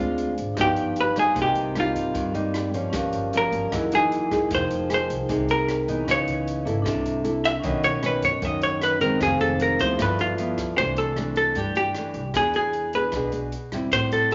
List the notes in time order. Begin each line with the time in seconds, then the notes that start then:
Already playing: D3 G#3 C4 D4 F4 G#4 C5 F5
0.00 D2
0.18 closed hi-hat
0.38 G#1, closed hi-hat
0.55 G1 G2 F3 D#4 G4, kick, cross-stick, closed hi-hat
0.59 B3 D#4 G4 B4 F5
0.76 closed hi-hat
0.96 closed hi-hat
1.01 B4
1.16 G3 A#3 D#4 G#4, cross-stick, closed hi-hat
1.34 C2 C3 C4 G4 A#4, kick, closed hi-hat
1.40 G4 D#5
1.55 C2, closed hi-hat
1.75 G3 A#3 D#4, cross-stick, closed hi-hat
1.80 F4
1.95 G2, closed hi-hat
2.14 G2, kick, closed hi-hat
2.34 G3 A#3 D#4, closed hi-hat
2.54 cross-stick, closed hi-hat
2.74 F3 A#3 C#4, closed hi-hat
2.90 G1 G2 C#4 G4, kick, cross-stick, closed hi-hat
2.94 A#4 F5
3.13 G1, closed hi-hat
3.33 F3 A#3 C#4, closed hi-hat
3.37 A#4
3.52 G1, closed hi-hat
3.69 F#1 F#2 E3 A#3 D#4 G#4 A#4 D#5, kick, cross-stick, closed hi-hat
3.75 E4
3.92 E3 A#3 D#4 G#4, closed hi-hat
4.12 closed hi-hat
4.31 A#3 D#4 G#4, kick, cross-stick, closed hi-hat
4.48 F1 F3 D#4 G#4 A#4, kick, closed hi-hat
4.55 C5 G5
4.70 F1, closed hi-hat
4.89 A#3 D#4 G#4, cross-stick, closed hi-hat
4.94 C5
5.10 C2, closed hi-hat
5.28 C2 C3 A#3 D#4 G#4, kick, closed hi-hat
5.49 A#4, closed hi-hat
5.68 cross-stick, closed hi-hat
5.88 E3 B3 D#4, closed hi-hat
6.05 C#2 C#3 C#4 B4, kick, cross-stick, closed hi-hat
6.11 C#5 D#5
6.27 C#2, closed hi-hat
6.47 closed hi-hat
6.65 G#1 A#3 E4 A4, closed hi-hat
6.82 C2 C3 D4 A4, kick, cross-stick, closed hi-hat
6.88 E5
7.06 closed hi-hat
7.24 A#3 E4 A4, closed hi-hat
7.45 E5, cross-stick, closed hi-hat
7.60 B2 D#3 A#3 C#4 A#4, kick, closed hi-hat
7.64 B1 B3 C#4 D#5
7.83 B1 C#5, closed hi-hat
8.03 D#3 A#3 C#4 B4, cross-stick, closed hi-hat
8.22 F#2 C#5, closed hi-hat
8.42 F#2 D#3 A#3 C#4 D#5, kick, closed hi-hat
8.62 C#5, closed hi-hat
8.82 B4, cross-stick, closed hi-hat
9.01 D#3 G#3 C4 A#4, closed hi-hat
9.18 F1 F2 D#4 G#4 C5, kick, cross-stick, closed hi-hat
9.23 G#4 F5
9.41 F1 A4, closed hi-hat
9.60 A#4, closed hi-hat
9.79 D2 F3 B3 E4 C5, closed hi-hat
9.95 G1 A4 E5, kick, cross-stick, closed hi-hat
9.99 G2 F4 B4
10.19 F4, closed hi-hat
10.38 F3 B3 E4, closed hi-hat
10.58 kick, cross-stick, closed hi-hat
10.78 C2 C3 E3 A3 D4 C5, kick, closed hi-hat
10.96 A4, closed hi-hat
11.16 E3 A3 D4, cross-stick, closed hi-hat
11.36 A4, closed hi-hat
11.55 G2 G4, kick, closed hi-hat
11.75 G2 G4, closed hi-hat
11.94 E3 A3 D4, cross-stick, closed hi-hat
12.14 C2, closed hi-hat
12.34 E2 E3 B3 D4 G#4, kick, cross-stick, closed hi-hat
12.54 G#4, closed hi-hat
12.73 closed hi-hat
12.93 B3 D4 G#4 B4, closed hi-hat
13.12 B1 B2 B3 G#4, kick, cross-stick, closed hi-hat
13.16 D4
13.32 B1, closed hi-hat
13.52 closed hi-hat
13.72 E2 G3 C4 E4, cross-stick, closed hi-hat
13.92 A1 A2 C5, kick, closed hi-hat
14.12 A4, closed hi-hat
14.31 cross-stick, closed hi-hat